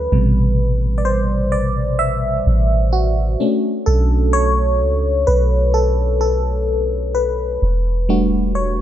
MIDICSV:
0, 0, Header, 1, 3, 480
1, 0, Start_track
1, 0, Tempo, 937500
1, 61, Time_signature, 4, 2, 24, 8
1, 4513, End_track
2, 0, Start_track
2, 0, Title_t, "FM electric piano"
2, 0, Program_c, 0, 5
2, 0, Control_c, 0, 64, 127
2, 0, Note_on_c, 0, 69, 81
2, 0, Note_on_c, 0, 71, 95
2, 63, Note_on_c, 0, 48, 54
2, 66, Note_on_c, 0, 55, 49
2, 68, Control_c, 0, 64, 0
2, 69, Note_on_c, 0, 47, 59
2, 71, Note_off_c, 0, 69, 0
2, 151, Control_c, 0, 64, 127
2, 501, Note_on_c, 0, 74, 70
2, 525, Note_off_c, 0, 71, 0
2, 538, Note_on_c, 0, 72, 95
2, 539, Note_off_c, 0, 74, 0
2, 762, Note_off_c, 0, 48, 0
2, 763, Note_off_c, 0, 55, 0
2, 764, Note_off_c, 0, 47, 0
2, 778, Note_on_c, 0, 74, 95
2, 787, Note_off_c, 0, 72, 0
2, 850, Note_off_c, 0, 74, 0
2, 1018, Note_on_c, 0, 76, 102
2, 1498, Note_on_c, 0, 66, 86
2, 1514, Note_off_c, 0, 76, 0
2, 1742, Note_on_c, 0, 62, 53
2, 1745, Note_on_c, 0, 57, 49
2, 1748, Control_c, 0, 64, 0
2, 1748, Note_on_c, 0, 61, 59
2, 1821, Control_c, 0, 64, 127
2, 1959, Note_off_c, 0, 66, 0
2, 1977, Note_on_c, 0, 69, 92
2, 2218, Note_on_c, 0, 73, 97
2, 2227, Note_off_c, 0, 69, 0
2, 2699, Note_on_c, 0, 71, 87
2, 2714, Note_off_c, 0, 73, 0
2, 2923, Note_off_c, 0, 71, 0
2, 2938, Note_on_c, 0, 69, 89
2, 3163, Note_off_c, 0, 69, 0
2, 3178, Note_on_c, 0, 69, 89
2, 3639, Note_off_c, 0, 69, 0
2, 3641, Note_off_c, 0, 62, 0
2, 3643, Note_off_c, 0, 57, 0
2, 3644, Note_off_c, 0, 61, 0
2, 3659, Note_on_c, 0, 71, 85
2, 3909, Control_c, 0, 64, 0
2, 3990, Control_c, 0, 64, 127
2, 4141, Note_on_c, 0, 55, 56
2, 4143, Note_on_c, 0, 57, 52
2, 4145, Note_on_c, 0, 62, 51
2, 4148, Note_on_c, 0, 66, 61
2, 4360, Note_off_c, 0, 71, 0
2, 4379, Note_on_c, 0, 73, 85
2, 4461, Note_off_c, 0, 55, 0
2, 4462, Note_off_c, 0, 57, 0
2, 4463, Note_off_c, 0, 62, 0
2, 4464, Note_off_c, 0, 66, 0
2, 4513, Note_off_c, 0, 73, 0
2, 4513, End_track
3, 0, Start_track
3, 0, Title_t, "808-style bass"
3, 0, Program_c, 1, 38
3, 63, Note_on_c, 1, 33, 112
3, 1242, Note_off_c, 1, 33, 0
3, 1263, Note_on_c, 1, 33, 104
3, 1723, Note_off_c, 1, 33, 0
3, 1983, Note_on_c, 1, 35, 101
3, 2463, Note_on_c, 1, 37, 98
3, 2471, Note_off_c, 1, 35, 0
3, 2690, Note_off_c, 1, 37, 0
3, 2703, Note_on_c, 1, 35, 97
3, 3882, Note_off_c, 1, 35, 0
3, 3903, Note_on_c, 1, 28, 108
3, 4513, Note_off_c, 1, 28, 0
3, 4513, End_track
0, 0, End_of_file